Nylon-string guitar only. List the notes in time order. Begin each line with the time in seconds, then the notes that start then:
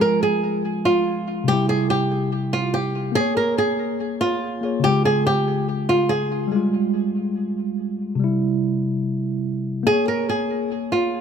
0.01 A#4
0.23 G#4
0.85 F4
1.48 G4
1.69 G#4
1.90 G4
2.53 F4
2.74 G4
3.15 G#4
3.37 A#4
3.58 G#4
4.21 F4
4.84 G4
5.05 G#4
5.27 G4
5.89 F4
6.09 G#4
9.87 G#4
10.08 A#4
10.29 G#4
10.92 F4